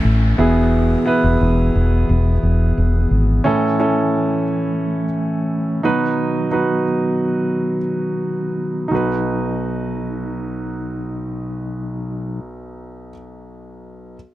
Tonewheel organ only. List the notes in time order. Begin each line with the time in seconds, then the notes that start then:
Already playing: E3 A3 C#4
0.40 B3 G#4
3.46 A3 C#4
5.84 D#3 F#3 B3
8.91 B2 F#3 D#4